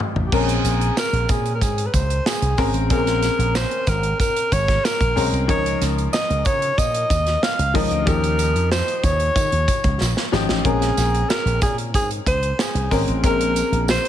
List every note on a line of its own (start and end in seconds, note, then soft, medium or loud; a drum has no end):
0.00 0.34 F3 medium
0.00 0.34 G3 soft
0.00 0.32 G#3 medium
0.00 0.35 D#4 medium
0.00 0.34 G4 medium
0.00 0.34 G5 medium
0.00 mid tom medium
0.16 0.29 A1 medium
0.16 floor tom medium
0.26 0.35 G4 medium
0.32 0.58 A#1 loud
0.32 1.11 G#3 medium
0.32 1.11 C4 medium
0.32 1.11 C#4 medium
0.32 0.97 G#4 medium
0.32 1.11 A#4 medium
0.32 kick loud
0.32 crash medium
0.32 tambourine soft
0.49 closed hi-hat medium
0.64 0.89 A#1 loud
0.64 closed hi-hat medium
0.64 tambourine medium
0.81 closed hi-hat soft
0.97 1.32 A#4 loud
0.97 snare loud
0.97 tambourine medium
1.13 1.25 A#1 medium
1.13 closed hi-hat soft
1.29 1.62 A#2 loud
1.29 1.54 G#4 medium
1.29 kick loud
1.29 closed hi-hat medium
1.29 tambourine soft
1.46 closed hi-hat soft
1.55 1.64 A#4 medium
1.61 1.87 G#2 loud
1.61 1.88 G#4 medium
1.61 kick medium
1.61 closed hi-hat medium
1.61 tambourine medium
1.78 closed hi-hat medium
1.86 1.95 B4 medium
1.94 2.19 C#2 medium
1.94 2.28 C5 medium
1.94 kick medium
1.94 closed hi-hat medium
1.94 tambourine medium
2.10 closed hi-hat soft
2.26 2.75 G#4 medium
2.26 snare loud
2.26 tambourine medium
2.42 2.55 C2 medium
2.42 closed hi-hat medium
2.57 2.71 G#1 medium
2.57 2.77 G#3 medium
2.57 2.78 C4 medium
2.57 2.78 C#4 medium
2.57 2.78 A#4 medium
2.57 kick medium
2.57 snare soft
2.57 open hi-hat medium
2.74 2.90 A1 medium
2.74 closed hi-hat medium
2.90 3.28 A#1 loud
2.90 3.69 G#3 medium
2.90 3.69 C4 medium
2.90 3.69 C#4 medium
2.90 2.97 G#4 medium
2.90 3.57 A#4 medium
2.90 kick loud
2.90 closed hi-hat medium
2.90 tambourine soft
2.97 3.73 A#4 medium
3.07 snare soft
3.07 closed hi-hat medium
3.22 snare soft
3.22 closed hi-hat medium
3.22 tambourine medium
3.39 3.64 A#1 loud
3.39 closed hi-hat soft
3.55 3.90 C5 loud
3.55 snare loud
3.55 tambourine medium
3.71 closed hi-hat soft
3.87 4.13 G#1 medium
3.87 4.20 A#4 medium
3.87 kick medium
3.87 closed hi-hat medium
3.87 tambourine soft
4.03 closed hi-hat soft
4.20 4.54 A#4 medium
4.20 kick medium
4.20 closed hi-hat medium
4.20 tambourine medium
4.36 closed hi-hat medium
4.52 4.77 G#1 medium
4.52 4.86 C#5 loud
4.52 kick medium
4.52 closed hi-hat medium
4.52 tambourine soft
4.68 kick medium
4.68 snare soft
4.68 closed hi-hat soft
4.84 5.33 A#4 loud
4.84 snare loud
4.84 tambourine medium
5.00 5.13 A#1 medium
5.00 kick loud
5.00 closed hi-hat medium
5.15 5.29 B1 medium
5.15 5.36 G#3 medium
5.15 5.36 C4 medium
5.15 5.36 C#4 medium
5.15 5.36 A#4 medium
5.15 open hi-hat medium
5.15 tambourine soft
5.32 5.49 C2 medium
5.32 closed hi-hat soft
5.48 5.74 C#2 loud
5.48 6.27 F3 medium
5.48 6.27 C#4 medium
5.48 6.27 D#4 medium
5.48 6.27 A#4 medium
5.48 5.84 C#5 loud
5.48 kick loud
5.48 closed hi-hat medium
5.66 closed hi-hat medium
5.81 6.06 C#2 loud
5.81 snare soft
5.81 closed hi-hat medium
5.81 tambourine medium
5.98 closed hi-hat soft
6.13 6.47 D#5 loud
6.13 snare loud
6.13 tambourine medium
6.30 6.42 C#2 medium
6.30 closed hi-hat soft
6.45 6.71 C#3 loud
6.45 6.80 C#5 loud
6.45 kick medium
6.45 closed hi-hat medium
6.45 tambourine soft
6.62 closed hi-hat soft
6.78 7.03 A#2 medium
6.78 7.45 D#5 loud
6.78 kick medium
6.78 closed hi-hat medium
6.78 tambourine medium
6.94 closed hi-hat medium
7.10 7.35 D#2 medium
7.10 kick medium
7.10 closed hi-hat medium
7.10 tambourine medium
7.27 snare soft
7.27 closed hi-hat soft
7.43 7.77 F5 loud
7.43 snare loud
7.43 tambourine medium
7.59 7.71 C#2 loud
7.59 closed hi-hat medium
7.74 7.87 C#2 medium
7.74 7.94 F3 medium
7.74 7.94 C#4 medium
7.74 7.94 D#4 medium
7.74 7.95 A#4 medium
7.74 8.08 D#5 loud
7.74 kick medium
7.74 snare soft
7.74 open hi-hat medium
7.91 8.03 D2 medium
7.91 closed hi-hat soft
8.05 8.55 D#2 loud
8.05 8.85 F3 medium
8.05 8.85 C#4 medium
8.05 8.85 D#4 medium
8.05 8.86 G4 medium
8.05 8.71 A#4 loud
8.05 kick loud
8.05 closed hi-hat medium
8.05 tambourine soft
8.24 closed hi-hat medium
8.39 closed hi-hat medium
8.39 tambourine medium
8.55 8.80 F2 loud
8.55 closed hi-hat soft
8.72 8.98 C5 loud
8.72 snare loud
8.72 tambourine medium
8.88 closed hi-hat soft
8.98 9.05 C5 medium
9.03 9.29 D#2 medium
9.03 10.33 C#5 loud
9.03 kick medium
9.03 closed hi-hat medium
9.03 tambourine soft
9.20 closed hi-hat soft
9.36 9.49 D#3 loud
9.36 kick medium
9.36 closed hi-hat medium
9.36 tambourine medium
9.52 9.65 D#2 medium
9.52 closed hi-hat soft
9.68 kick medium
9.68 closed hi-hat medium
9.68 tambourine soft
9.84 9.97 C#2 medium
9.84 kick medium
9.84 closed hi-hat soft
10.01 10.13 A#1 loud
10.01 snare medium
10.01 tambourine medium
10.17 snare medium
10.32 10.45 G#1 medium
10.32 10.52 F3 medium
10.32 10.52 C#4 medium
10.32 10.53 D#4 medium
10.32 10.53 G4 loud
10.32 snare medium
10.32 tambourine soft
10.49 10.61 A1 medium
10.49 snare medium
10.64 10.90 A#1 loud
10.64 11.43 G#3 medium
10.64 11.44 C4 medium
10.64 11.44 C#4 medium
10.64 11.31 G#4 medium
10.64 11.44 A#4 medium
10.64 kick loud
10.64 closed hi-hat medium
10.82 snare soft
10.82 closed hi-hat medium
10.97 11.23 A#1 loud
10.97 snare soft
10.97 closed hi-hat medium
10.97 tambourine medium
11.15 closed hi-hat soft
11.29 11.62 A#4 medium
11.29 snare loud
11.29 tambourine medium
11.45 11.58 A#1 medium
11.45 closed hi-hat soft
11.61 11.94 A#2 loud
11.61 11.77 G#4 medium
11.61 kick medium
11.61 closed hi-hat medium
11.61 tambourine soft
11.78 closed hi-hat soft
11.94 12.19 G#2 loud
11.94 12.10 G#4 medium
11.94 kick medium
11.94 closed hi-hat medium
11.94 tambourine medium
12.11 closed hi-hat medium
12.26 12.52 C#2 medium
12.26 12.62 C5 loud
12.26 kick medium
12.26 closed hi-hat medium
12.26 tambourine medium
12.43 closed hi-hat soft
12.59 13.08 G#4 medium
12.59 snare loud
12.59 tambourine medium
12.75 12.87 C2 medium
12.75 closed hi-hat medium
12.90 13.04 G#1 medium
12.90 13.10 G#3 medium
12.90 13.11 C4 medium
12.90 13.11 C#4 medium
12.90 13.11 A#4 medium
12.90 kick medium
12.90 snare soft
12.90 open hi-hat medium
12.90 tambourine soft
13.07 13.24 A1 medium
13.07 closed hi-hat soft
13.23 13.61 A#1 loud
13.23 14.02 G#3 medium
13.23 14.02 C4 medium
13.23 14.02 C#4 medium
13.23 14.03 A#4 medium
13.23 13.85 A#4 loud
13.23 kick loud
13.23 closed hi-hat medium
13.23 tambourine soft
13.41 closed hi-hat medium
13.56 closed hi-hat medium
13.56 tambourine medium
13.72 13.97 A#1 medium
13.72 closed hi-hat soft
13.88 14.08 C5 loud
13.88 snare loud
13.88 tambourine medium
14.05 closed hi-hat soft